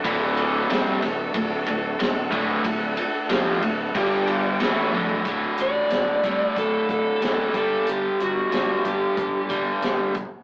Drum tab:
RD |x-x-x-x-x-x-x-x-|x-x-x-x-x-x-x---|----------------|----------------|
HH |----------------|----------------|x-x-x-x-x-x-x-x-|x-x-x-x-x-x-x-x-|
SD |----o-o-----o---|----o-------o---|----o-------o---|----o-------o---|
T1 |----------------|--------------o-|----------------|----------------|
FT |----------------|---------------o|----------------|----------------|
BD |o-------o-----o-|o-------o-------|o-----o-o-o---o-|------o-o-o---o-|